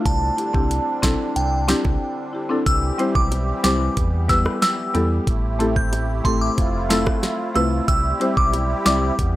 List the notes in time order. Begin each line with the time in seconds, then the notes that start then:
Already playing: D4
0.06 C2 D3 G3 C4 A5, kick, closed hi-hat
0.37 E4 G4, closed hi-hat
0.53 C2 C4 D4 E4 G4, kick
0.71 closed hi-hat
1.02 B1 C4 D4 E4 A4, kick, snare, closed hi-hat, low bongo
1.36 C2 G5, closed hi-hat
1.68 C4 D4 E4 G4, snare, closed hi-hat, high bongo
1.85 C2, kick, high bongo
2.33 E4 G4
2.49 C4 D4 E4 A4
2.66 C2 E3 G3 C4 G4 E6, kick, closed hi-hat
2.98 G3 C4 E4 G4 C5, closed hi-hat, high bongo
3.15 B1 D6, kick
3.31 closed hi-hat, high bongo
3.63 C2 G3 C4 E4 G4 C5 D6, snare, closed hi-hat
3.97 E2 B3, kick, closed hi-hat
4.28 G3 B3 E4 G4 B4 E6, kick, snare, closed hi-hat
4.45 cross-stick, high bongo
4.62 E6, snare, closed hi-hat, high bongo
4.94 E2 G3 B3 E4 G4 A4, closed hi-hat, high bongo, low bongo
5.27 A1 A3 C4 E4, kick, closed hi-hat
5.59 A3 C4 E4 G4 A4, closed hi-hat, high bongo
5.76 G6, kick
5.92 closed hi-hat, high bongo
6.24 A1 A3 C4 E4 G4 A4 C6, kick, closed hi-hat
6.41 D6
6.58 F1 F4, kick, closed hi-hat
6.89 A3 C4 E4 F4 A4 E6, snare, closed hi-hat
7.06 kick, cross-stick, high bongo
7.23 snare, closed hi-hat, high bongo
7.55 C2 A3 C4 E4 F4 B4 E6, closed hi-hat, high bongo, low bongo
7.88 C2 G3 G4 E6, kick, closed hi-hat
8.20 G3 C4 E4 G4 C5, closed hi-hat, high bongo
8.37 B1 D6, kick
8.53 closed hi-hat, high bongo
8.85 C2 G3 C4 E4 G4 D5 D6, snare, closed hi-hat
9.19 E2, kick, closed hi-hat